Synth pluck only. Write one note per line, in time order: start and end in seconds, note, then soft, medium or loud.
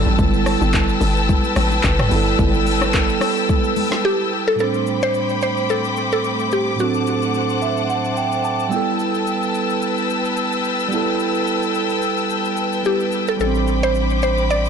4.05 4.48 G4 medium
4.48 4.59 A4 medium
4.60 5.04 A4 loud
5.03 5.40 C5 loud
5.43 5.71 C5 loud
5.70 6.11 A4 loud
6.13 6.49 A4 medium
6.53 6.78 G4 medium
6.80 7.31 F#4 medium
12.86 13.29 G4 medium
13.29 13.34 A4 medium
13.41 13.84 A4 medium
13.83 14.22 C5 loud
14.23 14.51 C5 loud
14.51 14.69 D5 loud